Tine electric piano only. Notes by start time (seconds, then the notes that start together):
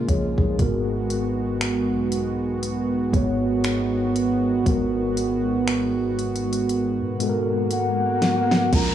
Already playing: A#4 D#5
0.09 G#4 C#5
0.38 D#4 G#4
0.57 G#2 G#3 B3 F#4
0.62 A#4
3.12 G#2 G#3 B3 F#4
3.16 C#5
4.64 G#2 G#3 B3 F#4
4.69 A#4
7.18 G#2 G#3 B3 F#4
7.23 A4
7.29 A#4
8.71 A#2 G#3 C#4 F4
8.75 A#4